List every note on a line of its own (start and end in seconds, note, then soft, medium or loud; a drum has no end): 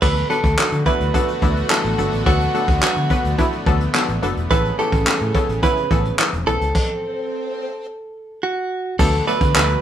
0.02 0.21 D2 loud
0.02 4.47 D3 medium
0.02 0.19 F#3 medium
0.02 6.71 A3 medium
0.02 0.19 B3 medium
0.02 6.71 B3 medium
0.02 0.20 D4 medium
0.02 4.47 F#4 medium
0.02 0.20 A4 loud
0.02 0.30 B4 loud
0.02 kick loud
0.02 crash medium
0.16 closed hi-hat soft
0.30 0.47 F#3 medium
0.30 0.47 B3 medium
0.30 0.48 D4 medium
0.30 0.82 A4 loud
0.30 0.48 B4 medium
0.30 closed hi-hat medium
0.44 0.53 D2 loud
0.44 kick loud
0.44 closed hi-hat medium
0.58 0.75 F#3 medium
0.58 0.76 B3 medium
0.58 0.76 D4 medium
0.58 0.76 A4 medium
0.58 muted fingered electric bass stroke soft
0.58 snare medium
0.58 clap loud
0.72 0.82 D3 medium
0.72 closed hi-hat medium
0.86 1.03 F#3 medium
0.86 1.04 B3 medium
0.86 1.04 D4 medium
0.86 1.04 E4 medium
0.86 1.70 B4 loud
0.86 kick medium
0.86 closed hi-hat medium
1.00 1.10 D2 medium
1.00 closed hi-hat medium
1.14 1.32 F#3 medium
1.14 1.32 B3 medium
1.14 1.32 D4 medium
1.14 1.32 A4 loud
1.14 kick medium
1.14 closed hi-hat medium
1.28 closed hi-hat soft
1.42 1.61 D2 medium
1.42 1.60 F#3 medium
1.42 1.60 B3 medium
1.42 1.60 D4 medium
1.42 1.60 E4 medium
1.42 kick loud
1.42 closed hi-hat medium
1.56 closed hi-hat soft
1.70 1.88 F#3 medium
1.70 1.88 B3 medium
1.70 1.88 D4 medium
1.70 1.88 E4 medium
1.70 2.22 A4 medium
1.70 snare medium
1.70 clap loud
1.84 1.94 A1 medium
1.84 closed hi-hat medium
1.98 2.08 G1 medium
1.98 2.16 F#3 medium
1.98 2.16 B3 medium
1.98 2.16 D4 medium
1.98 2.16 A4 medium
1.98 closed hi-hat medium
2.12 2.22 A1 medium
2.12 closed hi-hat medium
2.26 2.45 D2 loud
2.26 2.44 F#3 loud
2.26 2.44 B3 medium
2.26 2.44 D4 medium
2.26 2.81 F#4 medium
2.26 2.44 A4 loud
2.26 kick loud
2.26 closed hi-hat medium
2.40 closed hi-hat soft
2.54 2.72 F#3 medium
2.54 2.72 B3 medium
2.54 2.72 D4 medium
2.54 2.72 A4 medium
2.54 closed hi-hat medium
2.68 2.78 D2 medium
2.68 kick loud
2.68 closed hi-hat medium
2.82 3.00 F#3 medium
2.82 3.00 B3 medium
2.82 3.00 D4 medium
2.82 3.35 F#4 medium
2.82 3.00 A4 medium
2.82 muted fingered electric bass stroke soft
2.82 snare medium
2.82 clap loud
2.96 3.06 D3 medium
2.96 closed hi-hat medium
3.10 3.28 F#3 medium
3.10 3.28 B3 medium
3.10 3.28 D4 medium
3.10 3.28 B4 medium
3.10 kick medium
3.10 closed hi-hat medium
3.24 3.34 D2 medium
3.24 closed hi-hat medium
3.38 3.56 F#3 medium
3.38 3.56 B3 medium
3.38 3.56 D4 medium
3.38 3.56 E4 loud
3.38 kick loud
3.38 closed hi-hat loud
3.52 closed hi-hat soft
3.66 3.85 D2 loud
3.66 3.84 F#3 medium
3.66 3.84 B3 medium
3.66 3.84 D4 medium
3.66 3.84 A4 loud
3.66 kick loud
3.66 closed hi-hat medium
3.80 closed hi-hat soft
3.94 4.12 F#3 medium
3.94 4.12 B3 medium
3.94 4.12 D4 medium
3.94 4.12 A4 loud
3.94 snare medium
3.94 clap loud
4.09 4.18 A1 medium
4.09 closed hi-hat medium
4.22 4.32 F#1 medium
4.22 4.40 F#3 medium
4.22 4.40 B3 medium
4.22 4.40 D4 medium
4.22 4.40 A4 loud
4.22 closed hi-hat medium
4.37 4.46 E1 medium
4.37 closed hi-hat medium
4.50 4.69 A1 loud
4.50 6.73 C#3 medium
4.50 4.68 E3 loud
4.50 4.68 B3 medium
4.50 4.68 C#4 medium
4.50 4.68 A4 loud
4.50 4.78 B4 loud
4.50 kick loud
4.50 closed hi-hat medium
4.50 swell medium
4.65 closed hi-hat soft
4.78 4.96 E3 medium
4.78 4.96 B3 medium
4.78 4.96 C#4 medium
4.78 4.96 G4 medium
4.78 5.63 A4 loud
4.78 closed hi-hat medium
4.92 5.02 A1 medium
4.92 kick medium
4.92 closed hi-hat medium
5.06 5.24 E3 medium
5.06 5.24 B3 medium
5.06 5.24 C#4 medium
5.06 5.24 G4 medium
5.06 snare medium
5.06 clap loud
5.21 5.30 A2 medium
5.21 closed hi-hat soft
5.35 5.52 E3 medium
5.35 5.52 B3 medium
5.35 5.52 C#4 medium
5.35 5.52 A4 medium
5.35 kick medium
5.35 closed hi-hat medium
5.49 5.58 A1 medium
5.49 closed hi-hat medium
5.63 5.80 E3 loud
5.63 5.80 B3 medium
5.63 5.80 C#4 medium
5.63 5.80 E4 loud
5.63 6.15 B4 medium
5.63 kick medium
5.63 closed hi-hat loud
5.77 closed hi-hat soft
5.91 6.10 A1 medium
5.91 6.08 E3 medium
5.91 6.08 B3 medium
5.91 6.08 C#4 medium
5.91 6.08 A4 medium
5.91 kick medium
5.91 closed hi-hat medium
6.05 closed hi-hat soft
6.19 6.36 E3 medium
6.19 6.36 B3 medium
6.19 6.36 C#4 medium
6.19 6.36 A4 medium
6.19 snare medium
6.19 clap loud
6.33 6.42 E1 medium
6.33 closed hi-hat medium
6.47 6.56 B1 loud
6.47 6.64 E3 medium
6.47 6.64 B3 medium
6.47 6.64 C#4 medium
6.47 8.39 A4 loud
6.47 6.64 A4 medium
6.47 closed hi-hat medium
6.61 6.70 C#2 medium
6.61 closed hi-hat medium
6.75 kick loud
6.75 crash medium
8.43 8.95 F#4 medium
8.99 9.18 D2 loud
8.99 9.81 D3 medium
8.99 9.17 F#3 loud
8.99 9.17 A3 medium
8.99 9.81 A3 medium
8.99 9.17 B3 medium
8.99 9.81 B3 medium
8.99 9.17 D4 medium
8.99 9.81 F#4 medium
8.99 9.27 A4 loud
8.99 9.17 A4 loud
8.99 kick loud
8.99 crash loud
9.13 closed hi-hat soft
9.27 9.45 F#3 medium
9.27 9.45 A3 medium
9.27 9.45 B3 medium
9.27 9.45 D4 medium
9.27 9.45 A4 medium
9.27 9.54 B4 loud
9.27 closed hi-hat medium
9.41 9.50 D3 loud
9.41 kick loud
9.41 closed hi-hat medium
9.55 9.74 D2 medium
9.55 9.73 F#3 medium
9.55 9.73 A3 medium
9.55 9.73 B3 medium
9.55 9.73 D4 medium
9.55 9.73 A4 medium
9.55 9.81 B4 loud
9.55 snare medium
9.55 clap loud
9.69 closed hi-hat medium